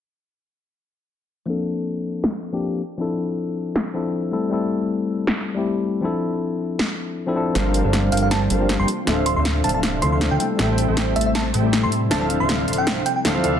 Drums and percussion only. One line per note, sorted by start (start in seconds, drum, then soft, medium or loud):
2.24 snare loud
3.76 snare loud
5.27 snare loud
6.79 snare loud
7.55 snare soft
7.55 closed hi-hat medium
7.74 closed hi-hat medium
7.93 snare soft
7.93 closed hi-hat medium
8.12 closed hi-hat soft
8.17 closed hi-hat medium
8.31 snare soft
8.31 closed hi-hat medium
8.50 closed hi-hat medium
8.69 snare soft
8.69 closed hi-hat medium
8.88 closed hi-hat medium
9.07 snare soft
9.07 closed hi-hat medium
9.26 closed hi-hat medium
9.45 snare medium
9.45 closed hi-hat medium
9.64 closed hi-hat soft
9.69 closed hi-hat medium
9.83 snare medium
9.83 closed hi-hat medium
10.02 closed hi-hat medium
10.21 snare medium
10.21 closed hi-hat medium
10.40 closed hi-hat medium
10.59 snare medium
10.59 closed hi-hat medium
10.78 closed hi-hat medium
10.97 snare medium
10.97 closed hi-hat medium
11.16 closed hi-hat soft
11.21 closed hi-hat medium
11.35 snare medium
11.35 closed hi-hat medium
11.54 closed hi-hat medium
11.73 snare medium
11.73 closed hi-hat medium
11.92 closed hi-hat medium
12.11 snare medium
12.11 closed hi-hat medium
12.30 closed hi-hat medium
12.49 snare medium
12.49 closed hi-hat medium
12.68 closed hi-hat soft
12.73 closed hi-hat medium
12.87 snare medium
12.87 closed hi-hat medium
13.06 closed hi-hat medium
13.25 snare medium
13.25 closed hi-hat medium
13.44 closed hi-hat medium